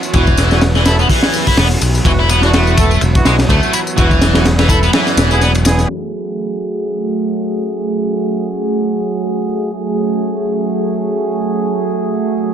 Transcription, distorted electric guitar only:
0, 0, Header, 1, 2, 480
1, 0, Start_track
1, 0, Key_signature, 3, "minor"
1, 0, Tempo, 480000
1, 135, Time_signature, 4, 2, 24, 8
1, 12538, End_track
2, 0, Start_track
2, 0, Title_t, "Distorted electric guitar"
2, 0, Program_c, 0, 30
2, 142, Note_on_c, 0, 52, 80
2, 608, Note_off_c, 0, 52, 0
2, 755, Note_on_c, 0, 52, 76
2, 852, Note_off_c, 0, 52, 0
2, 860, Note_on_c, 0, 64, 97
2, 947, Note_off_c, 0, 64, 0
2, 994, Note_on_c, 0, 59, 102
2, 1062, Note_off_c, 0, 59, 0
2, 1100, Note_on_c, 0, 52, 81
2, 1458, Note_off_c, 0, 52, 0
2, 1474, Note_on_c, 0, 64, 78
2, 1572, Note_off_c, 0, 64, 0
2, 1583, Note_on_c, 0, 59, 84
2, 1668, Note_off_c, 0, 59, 0
2, 2059, Note_on_c, 0, 52, 97
2, 2110, Note_off_c, 0, 52, 0
2, 2194, Note_on_c, 0, 64, 76
2, 2287, Note_off_c, 0, 64, 0
2, 2300, Note_on_c, 0, 59, 95
2, 2426, Note_off_c, 0, 59, 0
2, 2435, Note_on_c, 0, 62, 73
2, 2502, Note_off_c, 0, 62, 0
2, 2539, Note_on_c, 0, 57, 77
2, 3006, Note_off_c, 0, 57, 0
2, 3258, Note_on_c, 0, 56, 75
2, 3346, Note_off_c, 0, 56, 0
2, 3498, Note_on_c, 0, 57, 87
2, 3726, Note_off_c, 0, 57, 0
2, 3737, Note_on_c, 0, 64, 103
2, 3790, Note_off_c, 0, 64, 0
2, 3975, Note_on_c, 0, 52, 79
2, 4445, Note_off_c, 0, 52, 0
2, 4593, Note_on_c, 0, 52, 78
2, 4692, Note_off_c, 0, 52, 0
2, 4695, Note_on_c, 0, 64, 97
2, 4784, Note_off_c, 0, 64, 0
2, 4831, Note_on_c, 0, 59, 104
2, 4900, Note_off_c, 0, 59, 0
2, 4934, Note_on_c, 0, 52, 81
2, 5296, Note_off_c, 0, 52, 0
2, 5310, Note_on_c, 0, 64, 77
2, 5410, Note_off_c, 0, 64, 0
2, 5417, Note_on_c, 0, 59, 88
2, 5505, Note_off_c, 0, 59, 0
2, 12538, End_track
0, 0, End_of_file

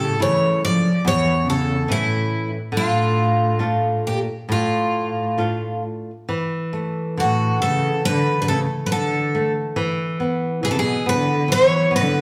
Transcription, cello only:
0, 0, Header, 1, 2, 480
1, 0, Start_track
1, 0, Key_signature, -1, "minor"
1, 0, Tempo, 846262
1, 1555, Time_signature, 4, 2, 24, 8
1, 1556, Tempo, 884956
1, 3479, Key_signature, 2, "major"
1, 4436, Tempo, 862069
1, 6751, End_track
2, 0, Start_track
2, 0, Title_t, "Cello"
2, 0, Program_c, 0, 42
2, 0, Note_on_c, 0, 49, 70
2, 106, Note_off_c, 0, 49, 0
2, 126, Note_on_c, 0, 52, 81
2, 345, Note_off_c, 0, 52, 0
2, 363, Note_on_c, 0, 53, 78
2, 583, Note_off_c, 0, 53, 0
2, 599, Note_on_c, 0, 52, 83
2, 820, Note_off_c, 0, 52, 0
2, 831, Note_on_c, 0, 49, 65
2, 1054, Note_off_c, 0, 49, 0
2, 1084, Note_on_c, 0, 45, 66
2, 1416, Note_off_c, 0, 45, 0
2, 1562, Note_on_c, 0, 45, 71
2, 2246, Note_off_c, 0, 45, 0
2, 2272, Note_on_c, 0, 46, 60
2, 2378, Note_off_c, 0, 46, 0
2, 2517, Note_on_c, 0, 45, 60
2, 3225, Note_off_c, 0, 45, 0
2, 3974, Note_on_c, 0, 45, 68
2, 4189, Note_off_c, 0, 45, 0
2, 4204, Note_on_c, 0, 49, 73
2, 4421, Note_off_c, 0, 49, 0
2, 4443, Note_on_c, 0, 50, 74
2, 4628, Note_off_c, 0, 50, 0
2, 4635, Note_on_c, 0, 50, 52
2, 4672, Note_off_c, 0, 50, 0
2, 4681, Note_on_c, 0, 49, 72
2, 4771, Note_off_c, 0, 49, 0
2, 4885, Note_on_c, 0, 50, 53
2, 4918, Note_off_c, 0, 50, 0
2, 4923, Note_on_c, 0, 50, 68
2, 5256, Note_off_c, 0, 50, 0
2, 5885, Note_on_c, 0, 47, 70
2, 5915, Note_off_c, 0, 47, 0
2, 5921, Note_on_c, 0, 49, 63
2, 5953, Note_off_c, 0, 49, 0
2, 5960, Note_on_c, 0, 47, 69
2, 6109, Note_off_c, 0, 47, 0
2, 6134, Note_on_c, 0, 50, 78
2, 6349, Note_off_c, 0, 50, 0
2, 6372, Note_on_c, 0, 52, 91
2, 6588, Note_off_c, 0, 52, 0
2, 6620, Note_on_c, 0, 50, 73
2, 6751, Note_off_c, 0, 50, 0
2, 6751, End_track
0, 0, End_of_file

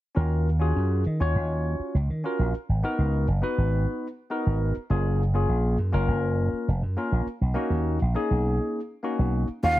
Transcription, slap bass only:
0, 0, Header, 1, 3, 480
1, 0, Start_track
1, 0, Key_signature, -6, "minor"
1, 0, Tempo, 591716
1, 131, Time_signature, 4, 2, 24, 8
1, 7947, End_track
2, 0, Start_track
2, 0, Title_t, "Slap bass"
2, 0, Program_c, 0, 36
2, 133, Note_on_c, 0, 39, 82
2, 579, Note_off_c, 0, 39, 0
2, 617, Note_on_c, 0, 42, 75
2, 836, Note_off_c, 0, 42, 0
2, 861, Note_on_c, 0, 51, 71
2, 970, Note_off_c, 0, 51, 0
2, 976, Note_on_c, 0, 39, 67
2, 1083, Note_off_c, 0, 39, 0
2, 1096, Note_on_c, 0, 39, 74
2, 1429, Note_off_c, 0, 39, 0
2, 1577, Note_on_c, 0, 37, 71
2, 1688, Note_off_c, 0, 37, 0
2, 1703, Note_on_c, 0, 51, 61
2, 1807, Note_off_c, 0, 51, 0
2, 1939, Note_on_c, 0, 34, 75
2, 2044, Note_off_c, 0, 34, 0
2, 2181, Note_on_c, 0, 32, 64
2, 2286, Note_off_c, 0, 32, 0
2, 2420, Note_on_c, 0, 37, 71
2, 2639, Note_off_c, 0, 37, 0
2, 2658, Note_on_c, 0, 30, 67
2, 2764, Note_off_c, 0, 30, 0
2, 2902, Note_on_c, 0, 32, 73
2, 3120, Note_off_c, 0, 32, 0
2, 3620, Note_on_c, 0, 32, 72
2, 3839, Note_off_c, 0, 32, 0
2, 3973, Note_on_c, 0, 30, 86
2, 4419, Note_off_c, 0, 30, 0
2, 4452, Note_on_c, 0, 34, 74
2, 4673, Note_off_c, 0, 34, 0
2, 4691, Note_on_c, 0, 42, 71
2, 4805, Note_off_c, 0, 42, 0
2, 4814, Note_on_c, 0, 30, 71
2, 4922, Note_off_c, 0, 30, 0
2, 4930, Note_on_c, 0, 30, 79
2, 5266, Note_off_c, 0, 30, 0
2, 5418, Note_on_c, 0, 29, 76
2, 5528, Note_off_c, 0, 29, 0
2, 5534, Note_on_c, 0, 42, 67
2, 5641, Note_off_c, 0, 42, 0
2, 5775, Note_on_c, 0, 34, 73
2, 5882, Note_off_c, 0, 34, 0
2, 6012, Note_on_c, 0, 35, 71
2, 6120, Note_off_c, 0, 35, 0
2, 6245, Note_on_c, 0, 39, 70
2, 6471, Note_off_c, 0, 39, 0
2, 6502, Note_on_c, 0, 34, 66
2, 6605, Note_off_c, 0, 34, 0
2, 6738, Note_on_c, 0, 35, 80
2, 6957, Note_off_c, 0, 35, 0
2, 7454, Note_on_c, 0, 35, 77
2, 7674, Note_off_c, 0, 35, 0
2, 7812, Note_on_c, 0, 39, 81
2, 7922, Note_off_c, 0, 39, 0
2, 7947, End_track
3, 0, Start_track
3, 0, Title_t, "Muted slap bass strokes"
3, 1453, Note_on_c, 9, 29, 30
3, 1534, Note_off_c, 9, 29, 0
3, 2061, Note_on_c, 9, 29, 30
3, 2142, Note_off_c, 9, 29, 0
3, 5294, Note_on_c, 9, 29, 29
3, 5375, Note_off_c, 9, 29, 0
3, 5889, Note_on_c, 9, 29, 33
3, 5970, Note_off_c, 9, 29, 0
3, 7947, End_track
0, 0, End_of_file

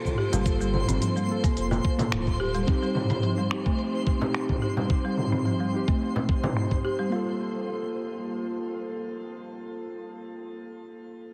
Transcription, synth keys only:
0, 0, Header, 1, 2, 480
1, 0, Start_track
1, 0, Key_signature, -2, "minor"
1, 0, Tempo, 555556
1, 393, Time_signature, 4, 2, 24, 8
1, 9793, End_track
2, 0, Start_track
2, 0, Title_t, "Synth keys"
2, 0, Program_c, 0, 88
2, 0, Control_c, 0, 64, 127
2, 0, Note_on_c, 0, 58, 82
2, 0, Note_on_c, 0, 65, 79
2, 0, Note_on_c, 0, 69, 88
2, 359, Note_off_c, 0, 58, 0
2, 368, Note_off_c, 0, 65, 0
2, 376, Note_off_c, 0, 69, 0
2, 378, Note_on_c, 0, 58, 87
2, 395, Note_on_c, 0, 65, 78
2, 414, Note_on_c, 0, 69, 91
2, 1079, Note_off_c, 0, 58, 0
2, 1087, Note_off_c, 0, 65, 0
2, 1097, Note_off_c, 0, 69, 0
2, 1100, Note_on_c, 0, 58, 82
2, 1116, Note_on_c, 0, 65, 79
2, 1135, Note_on_c, 0, 69, 89
2, 1689, Note_off_c, 0, 58, 0
2, 1697, Note_off_c, 0, 65, 0
2, 1703, Note_on_c, 0, 58, 85
2, 1706, Note_off_c, 0, 69, 0
2, 1721, Note_on_c, 0, 65, 73
2, 1736, Note_on_c, 0, 69, 91
2, 2278, Note_off_c, 0, 58, 0
2, 2286, Note_off_c, 0, 65, 0
2, 2294, Note_off_c, 0, 69, 0
2, 2303, Note_on_c, 0, 60, 90
2, 2321, Note_on_c, 0, 63, 79
2, 2325, Control_c, 0, 64, 0
2, 2339, Note_on_c, 0, 67, 95
2, 2460, Control_c, 0, 64, 127
2, 3001, Note_off_c, 0, 60, 0
2, 3010, Note_off_c, 0, 63, 0
2, 3019, Note_off_c, 0, 67, 0
2, 3019, Note_on_c, 0, 60, 80
2, 3037, Note_on_c, 0, 63, 78
2, 3057, Note_on_c, 0, 67, 92
2, 3608, Note_off_c, 0, 60, 0
2, 3617, Note_off_c, 0, 63, 0
2, 3625, Note_on_c, 0, 60, 84
2, 3627, Note_off_c, 0, 67, 0
2, 3643, Note_on_c, 0, 63, 75
2, 3662, Note_on_c, 0, 67, 91
2, 4198, Note_off_c, 0, 60, 0
2, 4208, Note_off_c, 0, 63, 0
2, 4217, Note_off_c, 0, 67, 0
2, 4218, Note_on_c, 0, 60, 80
2, 4235, Note_on_c, 0, 63, 73
2, 4251, Note_on_c, 0, 67, 88
2, 4918, Note_off_c, 0, 60, 0
2, 4927, Note_off_c, 0, 63, 0
2, 4935, Note_off_c, 0, 67, 0
2, 4941, Note_on_c, 0, 60, 73
2, 4959, Note_on_c, 0, 63, 74
2, 4977, Note_on_c, 0, 67, 86
2, 5530, Note_off_c, 0, 60, 0
2, 5538, Note_off_c, 0, 63, 0
2, 5547, Note_off_c, 0, 67, 0
2, 5550, Note_on_c, 0, 60, 68
2, 5560, Note_on_c, 0, 63, 68
2, 5566, Note_on_c, 0, 72, 77
2, 5751, Note_off_c, 0, 60, 0
2, 5756, Note_off_c, 0, 63, 0
2, 5759, Note_off_c, 0, 72, 0
2, 6129, Note_on_c, 0, 58, 72
2, 6154, Note_on_c, 0, 65, 69
2, 6164, Control_c, 0, 64, 0
2, 6181, Note_on_c, 0, 69, 82
2, 6297, Control_c, 0, 64, 127
2, 8934, Note_off_c, 0, 58, 0
2, 8959, Note_off_c, 0, 65, 0
2, 8986, Note_off_c, 0, 69, 0
2, 9793, End_track
0, 0, End_of_file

